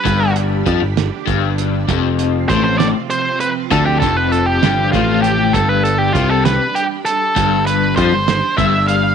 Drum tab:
HH |xxxxxx|xxxxxx|xxxxxx|xxxxxx|
SD |---o--|---o--|---o--|---o--|
BD |o-o-o-|o-o---|oo--o-|o-o---|

HH |xxxxxx|
SD |---o--|
BD |o-o-o-|